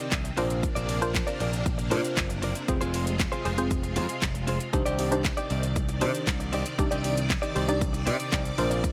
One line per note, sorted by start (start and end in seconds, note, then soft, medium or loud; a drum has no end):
0.00 4.69 C3 medium
0.00 0.34 D#3 medium
0.00 0.16 C4 medium
0.00 0.36 C4 medium
0.00 0.15 D#4 medium
0.00 0.15 G4 medium
0.00 0.15 D5 medium
0.12 0.29 C2 loud
0.12 kick loud
0.12 snare medium
0.12 clap loud
0.12 shaker medium
0.24 muted clean electric guitar stroke medium
0.24 closed hi-hat medium
0.24 shaker medium
0.37 0.64 A#1 loud
0.37 2.66 A#3 medium
0.37 0.58 C4 medium
0.37 0.89 D4 medium
0.37 2.66 D4 medium
0.37 0.89 F4 medium
0.37 0.50 F4 medium
0.37 0.89 A#4 medium
0.37 0.49 A#4 medium
0.37 0.89 C5 loud
0.37 0.49 D5 medium
0.37 open hi-hat medium
0.37 shaker medium
0.50 muted clean electric guitar stroke soft
0.50 closed hi-hat medium
0.50 shaker medium
0.63 muted clean electric guitar stroke soft
0.63 kick loud
0.63 shaker medium
0.75 1.20 A#1 medium
0.75 0.87 C4 medium
0.75 0.88 F4 medium
0.75 0.88 A#4 medium
0.75 0.89 D5 medium
0.75 closed hi-hat medium
0.75 shaker medium
0.88 1.05 C4 medium
0.88 1.01 F4 medium
0.88 1.01 A#4 medium
0.88 1.00 D5 medium
0.88 open hi-hat medium
0.88 shaker medium
1.01 1.44 D4 medium
1.01 1.44 F4 medium
1.01 1.44 A#4 medium
1.01 1.44 C5 medium
1.01 muted clean electric guitar stroke soft
1.01 closed hi-hat medium
1.01 shaker medium
1.14 muted clean electric guitar stroke soft
1.14 kick loud
1.14 snare medium
1.14 clap loud
1.14 shaker medium
1.27 1.38 C4 medium
1.27 1.39 F4 medium
1.27 1.40 A#4 medium
1.27 1.40 D5 medium
1.27 closed hi-hat medium
1.27 shaker medium
1.39 1.93 A#1 medium
1.39 1.56 C4 medium
1.39 1.53 F4 medium
1.39 1.52 A#4 medium
1.39 1.51 D5 medium
1.39 open hi-hat medium
1.39 shaker soft
1.53 muted clean electric guitar stroke soft
1.53 closed hi-hat medium
1.53 shaker medium
1.65 muted clean electric guitar stroke soft
1.65 kick loud
1.65 shaker medium
1.78 muted clean electric guitar stroke soft
1.78 closed hi-hat soft
1.78 shaker soft
1.90 2.00 A#2 medium
1.90 2.11 C4 medium
1.90 2.27 D4 medium
1.90 2.04 F4 medium
1.90 2.28 F4 medium
1.90 2.28 A#4 medium
1.90 2.03 A#4 medium
1.90 2.28 C5 loud
1.90 2.03 D5 loud
1.90 open hi-hat medium
1.90 shaker medium
2.04 muted clean electric guitar stroke soft
2.04 closed hi-hat medium
2.04 shaker medium
2.17 2.52 F#1 loud
2.17 kick loud
2.17 snare medium
2.17 clap loud
2.17 shaker medium
2.29 muted clean electric guitar stroke soft
2.29 closed hi-hat medium
2.29 shaker medium
2.42 2.63 C4 medium
2.42 2.55 F4 medium
2.42 2.55 A#4 medium
2.42 2.54 D5 medium
2.42 open hi-hat medium
2.42 shaker medium
2.55 muted clean electric guitar stroke soft
2.55 closed hi-hat medium
2.55 shaker medium
2.68 2.77 F1 loud
2.68 4.71 G#3 medium
2.68 3.04 C4 medium
2.68 4.71 F4 medium
2.68 3.05 F4 medium
2.68 3.05 G#4 medium
2.68 3.05 C5 loud
2.68 muted clean electric guitar stroke soft
2.68 kick loud
2.68 shaker medium
2.81 3.25 F1 medium
2.81 2.92 C4 medium
2.81 2.93 F4 medium
2.81 2.94 G#4 medium
2.81 2.94 C5 medium
2.81 closed hi-hat medium
2.81 shaker medium
2.94 3.10 C4 medium
2.94 3.07 F4 medium
2.94 3.06 G#4 medium
2.94 3.05 C5 medium
2.94 open hi-hat medium
2.94 shaker medium
3.06 muted clean electric guitar stroke soft
3.06 closed hi-hat medium
3.06 shaker medium
3.19 muted clean electric guitar stroke soft
3.19 kick loud
3.19 snare medium
3.19 clap loud
3.19 shaker medium
3.32 3.44 C4 medium
3.32 3.44 F4 medium
3.32 3.45 G#4 medium
3.32 3.45 C5 medium
3.32 closed hi-hat soft
3.32 shaker soft
3.45 3.98 F1 medium
3.45 3.61 C4 medium
3.45 3.58 F4 medium
3.45 3.51 G#4 medium
3.45 3.57 G#4 medium
3.45 3.51 C5 loud
3.45 3.57 C5 medium
3.45 open hi-hat medium
3.45 shaker soft
3.58 4.06 C4 medium
3.58 4.06 F4 medium
3.58 4.06 G#4 medium
3.58 4.06 C5 loud
3.58 muted clean electric guitar stroke medium
3.58 closed hi-hat medium
3.58 shaker medium
3.71 muted clean electric guitar stroke soft
3.71 kick loud
3.71 shaker medium
3.83 muted clean electric guitar stroke soft
3.83 closed hi-hat soft
3.83 shaker soft
3.96 4.05 F2 medium
3.96 4.09 C4 medium
3.96 4.09 F4 medium
3.96 4.08 G#4 medium
3.96 4.07 C5 medium
3.96 open hi-hat medium
3.96 shaker medium
4.09 4.26 C4 medium
4.09 4.26 F4 medium
4.09 4.25 G#4 medium
4.09 4.25 C5 medium
4.09 closed hi-hat medium
4.09 shaker medium
4.22 4.57 F1 loud
4.22 kick loud
4.22 snare medium
4.22 clap loud
4.22 shaker medium
4.34 muted clean electric guitar stroke soft
4.34 closed hi-hat medium
4.34 shaker medium
4.47 4.68 C4 medium
4.47 4.60 F4 medium
4.47 4.59 G#4 medium
4.47 4.59 C5 medium
4.47 open hi-hat medium
4.47 shaker medium
4.60 muted clean electric guitar stroke medium
4.60 closed hi-hat medium
4.60 shaker medium
4.73 4.82 C2 loud
4.73 8.92 C3 medium
4.73 8.54 D#3 medium
4.73 4.91 D4 medium
4.73 4.91 D#4 medium
4.73 4.91 G4 medium
4.73 4.92 C5 loud
4.73 8.92 D5 medium
4.73 muted clean electric guitar stroke soft
4.73 kick loud
4.73 shaker medium
4.86 5.30 C2 medium
4.86 4.97 C4 medium
4.86 4.98 D#4 medium
4.86 4.98 G4 medium
4.86 4.99 D5 medium
4.86 closed hi-hat medium
4.86 shaker medium
4.98 5.15 C4 medium
4.98 5.11 D#4 medium
4.98 5.11 G4 medium
4.98 5.10 D5 medium
4.98 open hi-hat medium
4.98 shaker medium
5.11 5.54 D4 medium
5.11 5.54 D#4 medium
5.11 5.54 G4 medium
5.11 5.54 C5 loud
5.11 muted clean electric guitar stroke soft
5.11 closed hi-hat medium
5.11 shaker medium
5.24 muted clean electric guitar stroke soft
5.24 kick loud
5.24 snare medium
5.24 clap loud
5.24 shaker medium
5.37 5.49 C4 medium
5.37 5.49 D#4 medium
5.37 5.50 G4 medium
5.37 5.51 D5 medium
5.37 closed hi-hat soft
5.37 shaker soft
5.50 6.03 C2 medium
5.50 5.66 C4 medium
5.50 5.63 D#4 medium
5.50 5.63 G4 medium
5.50 5.62 D5 medium
5.50 open hi-hat medium
5.50 shaker soft
5.63 muted clean electric guitar stroke medium
5.63 closed hi-hat medium
5.63 shaker medium
5.76 muted clean electric guitar stroke soft
5.76 kick loud
5.76 shaker medium
5.89 muted clean electric guitar stroke soft
5.89 closed hi-hat soft
5.89 shaker soft
6.01 6.11 C3 medium
6.01 6.22 C4 medium
6.01 6.38 D4 medium
6.01 6.38 D#4 medium
6.01 6.14 D#4 medium
6.01 6.38 G4 medium
6.01 6.14 G4 medium
6.01 6.38 C5 medium
6.01 6.13 D5 loud
6.01 open hi-hat medium
6.01 shaker medium
6.14 muted clean electric guitar stroke soft
6.14 closed hi-hat medium
6.14 shaker medium
6.27 6.62 C2 loud
6.27 kick loud
6.27 snare medium
6.27 clap loud
6.27 shaker medium
6.40 muted clean electric guitar stroke soft
6.40 closed hi-hat medium
6.40 shaker medium
6.53 6.73 C4 medium
6.53 6.66 D#4 loud
6.53 6.65 G4 loud
6.53 6.64 D5 loud
6.53 open hi-hat medium
6.53 shaker medium
6.66 muted clean electric guitar stroke soft
6.66 closed hi-hat medium
6.66 shaker medium
6.78 6.87 C2 loud
6.78 7.15 D4 medium
6.78 7.15 D#4 medium
6.78 7.15 G4 medium
6.78 7.15 D5 loud
6.78 muted clean electric guitar stroke soft
6.78 kick loud
6.78 shaker medium
6.91 7.35 C2 medium
6.91 7.02 C4 medium
6.91 7.03 D#4 medium
6.91 7.04 G4 medium
6.91 7.04 D5 medium
6.91 closed hi-hat medium
6.91 shaker medium
7.04 7.20 C4 medium
7.04 7.17 D#4 medium
7.04 7.16 G4 medium
7.04 7.15 D5 medium
7.04 open hi-hat medium
7.04 shaker medium
7.17 muted clean electric guitar stroke soft
7.17 closed hi-hat medium
7.17 shaker medium
7.29 muted clean electric guitar stroke soft
7.29 kick loud
7.29 snare medium
7.29 clap loud
7.29 shaker medium
7.42 7.54 C4 medium
7.42 7.54 D#4 medium
7.42 7.55 G4 medium
7.42 7.56 D5 medium
7.42 closed hi-hat soft
7.42 shaker medium
7.55 8.08 C2 medium
7.55 7.71 C4 medium
7.55 7.68 D#4 medium
7.55 7.61 G4 medium
7.55 7.67 G4 medium
7.55 7.62 C5 loud
7.55 7.66 D5 medium
7.55 open hi-hat medium
7.55 shaker medium
7.68 8.16 D4 medium
7.68 8.17 D#4 medium
7.68 8.17 G4 medium
7.68 8.17 D5 loud
7.68 muted clean electric guitar stroke medium
7.68 closed hi-hat medium
7.68 shaker medium
7.81 muted clean electric guitar stroke soft
7.81 kick loud
7.81 shaker medium
7.93 muted clean electric guitar stroke soft
7.93 closed hi-hat soft
7.93 shaker soft
8.06 8.16 C3 medium
8.06 8.19 C4 medium
8.06 8.19 D#4 medium
8.06 8.18 G4 loud
8.06 8.17 D5 loud
8.06 open hi-hat medium
8.06 shaker medium
8.19 8.30 C4 medium
8.19 8.31 D#4 medium
8.19 8.32 G4 medium
8.19 8.32 D5 medium
8.19 closed hi-hat medium
8.19 shaker medium
8.31 8.50 C2 loud
8.31 8.52 C4 medium
8.31 8.45 D#4 medium
8.31 8.44 G4 medium
8.31 8.43 D5 loud
8.31 kick loud
8.31 snare medium
8.31 clap loud
8.31 shaker medium
8.45 muted clean electric guitar stroke medium
8.45 closed hi-hat medium
8.45 shaker medium
8.57 8.85 A#1 loud
8.57 8.92 A#3 medium
8.57 8.92 D4 medium
8.57 8.92 F4 medium
8.57 8.92 A#4 medium
8.57 8.92 C5 loud
8.57 muted clean electric guitar stroke medium
8.57 open hi-hat medium
8.57 shaker medium
8.70 8.82 C4 soft
8.70 8.82 F4 medium
8.70 8.83 A#4 medium
8.70 8.83 D5 medium
8.70 closed hi-hat medium
8.70 shaker medium
8.83 muted clean electric guitar stroke soft
8.83 kick loud
8.83 shaker medium